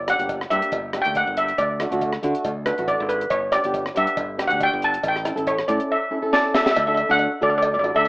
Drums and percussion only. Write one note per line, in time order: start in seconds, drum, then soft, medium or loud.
0.08 cross-stick medium
0.08 closed hi-hat medium
0.08 cowbell medium
0.19 closed hi-hat medium
0.29 kick medium
0.29 closed hi-hat medium
0.29 cowbell medium
0.41 cross-stick medium
0.51 closed hi-hat medium
0.62 closed hi-hat medium
0.72 kick loud
0.72 closed hi-hat medium
0.72 cowbell medium
0.93 cross-stick medium
0.93 closed hi-hat medium
0.93 cowbell medium
1.05 closed hi-hat medium
1.15 kick medium
1.15 closed hi-hat medium
1.15 cowbell medium
1.37 closed hi-hat medium
1.48 closed hi-hat medium
1.58 kick loud
1.58 closed hi-hat medium
1.58 cowbell medium
1.80 cross-stick medium
1.80 closed hi-hat medium
1.80 cowbell medium
1.92 closed hi-hat medium
2.01 kick medium
2.01 closed hi-hat medium
2.01 cowbell medium
2.13 cross-stick medium
2.23 closed hi-hat medium
2.35 closed hi-hat medium
2.45 kick loud
2.45 closed hi-hat medium
2.45 cowbell medium
2.66 cross-stick medium
2.66 closed hi-hat medium
2.66 cowbell medium
2.78 closed hi-hat medium
2.88 kick medium
2.88 closed hi-hat medium
2.88 cowbell medium
3.09 closed hi-hat medium
3.21 closed hi-hat medium
3.30 kick loud
3.30 closed hi-hat medium
3.30 cowbell medium
3.52 cross-stick medium
3.52 closed hi-hat medium
3.52 cowbell medium
3.64 closed hi-hat medium
3.74 kick medium
3.74 closed hi-hat medium
3.74 cowbell medium
3.86 cross-stick medium
3.96 closed hi-hat medium
4.07 closed hi-hat medium
4.17 kick loud
4.17 closed hi-hat medium
4.17 cowbell medium
4.39 cross-stick medium
4.39 closed hi-hat medium
4.39 cowbell medium
4.50 closed hi-hat medium
4.61 kick medium
4.61 closed hi-hat medium
4.61 cowbell medium
4.82 closed hi-hat medium
4.94 closed hi-hat medium
5.03 kick loud
5.03 closed hi-hat medium
5.03 cowbell medium
5.16 cross-stick medium
5.25 cross-stick medium
5.25 closed hi-hat medium
5.25 cowbell medium
5.37 closed hi-hat medium
5.47 kick medium
5.47 closed hi-hat medium
5.47 cowbell medium
5.59 cross-stick medium
5.69 closed hi-hat medium
5.80 closed hi-hat medium
6.33 snare medium
6.55 snare medium
6.66 snare medium
6.76 cowbell loud
6.97 cowbell medium
7.19 cowbell medium
7.62 cowbell medium
7.84 cowbell medium